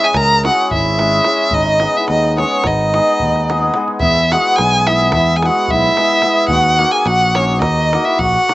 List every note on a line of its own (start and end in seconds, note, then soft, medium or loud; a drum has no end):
0.00 0.43 G#3 medium
0.00 0.15 G#4 medium
0.04 0.18 G#5 medium
0.14 0.48 C#2 loud
0.14 0.46 A#4 loud
0.14 0.46 A#5 loud
0.14 davul high medium
0.14 davul low medium
0.44 0.98 G#3 medium
0.44 0.62 C#4 medium
0.44 0.63 E4 medium
0.44 0.63 G#4 medium
0.44 0.70 F#5 medium
0.44 davul high medium
0.48 0.71 F#4 medium
0.71 1.19 G#1 medium
0.71 1.49 E4 medium
0.71 1.55 E5 medium
0.71 davul low medium
0.85 davul high soft
0.99 1.25 G#3 medium
0.99 1.17 C#4 medium
0.99 1.18 E4 medium
0.99 1.18 G#4 medium
0.99 davul high medium
1.12 davul high soft
1.24 1.57 G#3 medium
1.24 1.44 C#4 medium
1.24 1.44 E4 medium
1.24 1.44 G#4 medium
1.24 davul high medium
1.51 1.85 G#1 medium
1.51 1.96 D#4 medium
1.51 1.99 D#5 medium
1.51 davul low medium
1.66 davul high soft
1.80 2.35 G#3 medium
1.80 2.00 B3 medium
1.80 2.00 D#4 medium
1.80 2.00 G#4 medium
1.80 davul high medium
1.95 2.09 E4 medium
1.95 2.09 E5 medium
1.95 davul high soft
2.08 2.43 D#2 medium
2.08 2.37 D#4 medium
2.08 2.37 D#5 medium
2.08 davul high medium
2.23 davul high soft
2.36 2.92 G#3 medium
2.36 2.55 B3 medium
2.36 2.55 D#4 medium
2.36 2.56 G#4 medium
2.36 2.68 C#5 medium
2.36 davul high medium
2.41 2.64 C#4 medium
2.51 davul high soft
2.64 2.99 G#1 medium
2.64 3.76 D#4 medium
2.64 3.76 D#5 medium
2.64 davul high medium
2.64 davul low medium
2.93 3.48 G#3 medium
2.93 3.13 B3 medium
2.93 3.13 D#4 medium
2.93 3.13 G#4 medium
2.93 davul high medium
3.08 davul high soft
3.20 3.70 D#2 medium
3.20 davul low medium
3.36 davul high soft
3.49 3.73 G#3 medium
3.49 3.67 B3 medium
3.49 3.67 D#4 medium
3.49 3.67 G#4 medium
3.49 davul high medium
3.63 davul high soft
3.74 4.06 G#3 medium
3.74 3.93 B3 medium
3.74 3.93 D#4 medium
3.74 3.93 G#4 medium
3.74 davul high medium
3.88 davul high soft
4.00 4.36 E2 medium
4.00 4.29 E4 medium
4.00 4.34 E5 medium
4.00 davul low loud
4.17 davul high soft
4.32 4.86 G#3 medium
4.32 4.50 B3 medium
4.32 4.50 E4 medium
4.32 4.58 F#4 medium
4.32 4.50 G#4 medium
4.32 4.58 F#5 medium
4.32 davul high medium
4.56 5.15 B1 loud
4.56 4.88 G#4 medium
4.56 4.89 G#5 loud
4.56 davul high medium
4.72 davul high soft
4.87 5.42 G#3 medium
4.87 5.05 B3 medium
4.87 5.14 E4 medium
4.87 5.06 E4 medium
4.87 5.06 G#4 medium
4.87 5.14 E5 medium
4.87 davul high medium
5.00 davul high soft
5.12 5.48 E2 medium
5.12 5.36 E4 medium
5.12 5.38 E5 medium
5.12 davul high medium
5.12 davul low medium
5.36 5.45 G#4 medium
5.36 5.47 G#5 medium
5.42 5.95 G#3 medium
5.42 5.62 B3 medium
5.42 5.62 E4 medium
5.42 5.62 G#4 medium
5.42 5.72 F#5 medium
5.42 davul high medium
5.47 5.71 F#4 medium
5.56 davul high soft
5.68 5.88 B1 medium
5.68 6.49 E5 loud
5.68 davul low medium
5.73 6.51 E4 medium
5.82 davul high soft
5.96 6.23 G#3 medium
5.96 6.15 B3 medium
5.96 6.16 E4 medium
5.96 6.16 G#4 medium
5.96 davul high medium
6.10 davul high soft
6.22 6.55 G#3 medium
6.22 6.42 B3 medium
6.22 6.42 E4 medium
6.22 davul high medium
6.26 6.43 G#4 medium
6.48 6.84 D#2 medium
6.48 6.91 F#4 medium
6.48 6.93 F#5 loud
6.48 davul low medium
6.64 davul high soft
6.79 6.97 A#3 medium
6.79 6.98 D#4 medium
6.79 6.98 F#4 medium
6.79 6.98 A#4 medium
6.79 davul high soft
6.92 7.06 G#4 medium
6.92 7.08 G#5 medium
7.05 7.62 A#1 loud
7.05 7.37 F#4 medium
7.05 7.37 F#5 loud
7.05 davul high medium
7.21 davul high soft
7.35 7.53 A#3 medium
7.35 7.63 C#4 medium
7.35 7.54 D#4 medium
7.35 7.54 F#4 medium
7.35 7.54 A#4 medium
7.35 7.61 C#5 medium
7.35 davul high medium
7.49 davul high soft
7.62 7.96 D#2 medium
7.62 8.02 D#4 medium
7.62 8.06 D#5 medium
7.62 davul high medium
7.62 davul low medium
7.93 8.11 A#3 medium
7.93 8.11 D#4 medium
7.93 8.11 F#4 medium
7.93 8.12 A#4 medium
7.93 davul high medium
8.05 8.20 E4 medium
8.05 8.21 E5 medium
8.05 davul high soft
8.19 8.36 A#1 medium
8.19 8.54 F#4 medium
8.19 8.54 F#5 loud
8.19 davul low medium
8.34 davul high soft
8.48 8.54 A#3 medium
8.48 8.54 D#4 medium
8.48 8.54 F#4 medium
8.48 8.54 A#4 medium
8.48 davul high medium